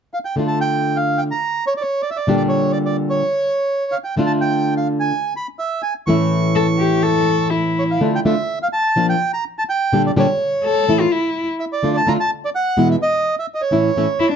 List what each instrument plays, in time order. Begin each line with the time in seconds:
0.14 bandoneon F5
0.25 bandoneon G5
0.36 nylon-string guitar D3 A3 D4 F4
0.48 bandoneon A5
0.61 bandoneon G5
0.96 bandoneon F5
1.18 bandoneon G5
1.31 bandoneon A#5
1.67 bandoneon C#5
1.77 bandoneon D5
1.81 bandoneon C#5
2.02 bandoneon D5
2.11 bandoneon E5
2.16 bandoneon D5
2.27 nylon-string guitar A#2 D3 G3 D4 G4
2.37 bandoneon D5
2.49 bandoneon C#5
2.72 bandoneon D5
2.86 bandoneon D5
3.10 bandoneon C#5
3.92 bandoneon F5
4.04 bandoneon G5
4.17 nylon-string guitar D3 A3 D4 F4
4.26 bandoneon A5
4.41 bandoneon G5
4.77 bandoneon F5
5.00 bandoneon G#5
5.36 bandoneon B5
5.59 bandoneon E5
5.83 bandoneon G#5
6.07 nylon-string guitar A2 E3 A3 C#4 E4, bandoneon C#6
6.55 cello A4
6.79 cello G4
7.03 cello A4
7.50 cello E4
7.79 bandoneon C#5
7.91 bandoneon F5
8.01 nylon-string guitar D3 A3 D4 F4
8.15 bandoneon G5
8.25 nylon-string guitar D3 A3 D4 F4, bandoneon E5
8.63 bandoneon F5
8.73 bandoneon A5
8.96 nylon-string guitar A#2 F3 A#3 D4 F4
9.09 bandoneon G5
9.34 bandoneon A#5
9.59 bandoneon A5
9.69 bandoneon G5
9.93 nylon-string guitar A#2 D3 G3 D4 G4
10.07 bandoneon D5
10.16 nylon-string guitar A#2 D3 G3 D4 G4, bandoneon C#5
10.64 cello A4
10.88 nylon-string guitar A2 E3 A3 C#4 E4
11.00 cello F4
11.12 cello E4
11.60 bandoneon E5
11.73 bandoneon D5
11.83 nylon-string guitar D3 A3 D4 F4
11.97 bandoneon A5
12.07 nylon-string guitar D3 A3 D4 F4, bandoneon A#5
12.20 bandoneon A5
12.45 bandoneon D5
12.55 bandoneon F#5
12.77 nylon-string guitar E2 B2 E3 G#3 B3 E4
12.91 bandoneon E5
13.02 bandoneon D#5
13.39 bandoneon E5
13.54 bandoneon D#5
13.61 bandoneon C#5
13.71 nylon-string guitar A2 E3 A3 C#4 E4
13.96 nylon-string guitar A2 E3 A3 C#4 E4
14.20 cello E4
14.32 cello D4